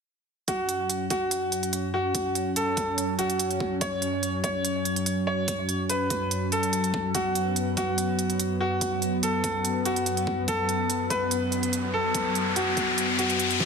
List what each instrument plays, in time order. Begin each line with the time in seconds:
0.48 analog synth pad F#2 F#3 C#4, grand piano F#4, kick, closed hi-hat
0.69 closed hi-hat
0.90 closed hi-hat
1.10 grand piano F#4, kick, closed hi-hat
1.31 closed hi-hat
1.52 closed hi-hat
1.63 closed hi-hat
1.73 closed hi-hat
1.94 grand piano F#4
2.15 kick, closed hi-hat
2.35 closed hi-hat
2.56 grand piano A4, closed hi-hat
2.77 kick, closed hi-hat
2.98 closed hi-hat
3.19 grand piano F#4, closed hi-hat
3.30 closed hi-hat
3.39 closed hi-hat
3.51 closed hi-hat
3.60 kick
3.81 grand piano C#5, kick, closed hi-hat
4.02 closed hi-hat
4.23 closed hi-hat
4.44 grand piano C#5, kick, closed hi-hat
4.65 closed hi-hat
4.85 closed hi-hat
4.96 closed hi-hat
5.06 closed hi-hat
5.27 grand piano C#5
5.48 kick, closed hi-hat
5.69 closed hi-hat
5.89 grand piano B4, closed hi-hat
6.10 kick, closed hi-hat
6.31 closed hi-hat
6.52 grand piano A4, closed hi-hat
6.63 closed hi-hat
6.73 closed hi-hat
6.84 closed hi-hat
6.94 kick
7.14 analog synth pad B3, grand piano F#4, kick, closed hi-hat
7.35 closed hi-hat
7.56 closed hi-hat
7.77 grand piano F#4, kick, closed hi-hat
7.98 closed hi-hat
8.19 closed hi-hat
8.30 closed hi-hat
8.40 closed hi-hat
8.61 grand piano F#4
8.81 kick, closed hi-hat
9.02 closed hi-hat
9.23 grand piano A4, closed hi-hat
9.44 kick, closed hi-hat
9.65 closed hi-hat
9.85 grand piano F#4, closed hi-hat
9.96 closed hi-hat
10.06 closed hi-hat
10.17 closed hi-hat
10.27 kick
10.48 grand piano A4, kick, closed hi-hat, riser
10.69 closed hi-hat
10.90 closed hi-hat
11.10 grand piano B4, kick, closed hi-hat
11.31 closed hi-hat
11.52 closed hi-hat
11.63 closed hi-hat
11.73 closed hi-hat
11.94 grand piano A4
12.15 kick, closed hi-hat
12.35 closed hi-hat
12.56 grand piano F#4, closed hi-hat
12.77 kick, closed hi-hat
12.98 closed hi-hat
13.19 grand piano F#4, closed hi-hat
13.30 closed hi-hat
13.40 closed hi-hat
13.50 closed hi-hat
13.60 kick, snare